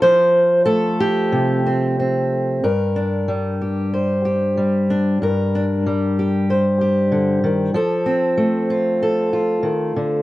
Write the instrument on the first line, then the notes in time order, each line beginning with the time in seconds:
steel-string acoustic guitar
0.02 F3 C5
0.66 A3 A4
1.01 G4
1.32 C3
1.66 C4
2.00 C4
2.64 G2 A#4
2.96 D4
3.28 G3
3.61 G4
3.93 C5
4.25 G4
4.57 G3
4.90 D4
5.22 G2 A#4
5.55 D4
5.86 G3
6.19 G4
6.50 C5
6.81 G4
7.12 D3
7.44 D#3
7.74 F3 A4
8.06 C4
8.37 A3
8.70 F4
9.02 A4
9.33 F4
9.63 D#3
9.96 D3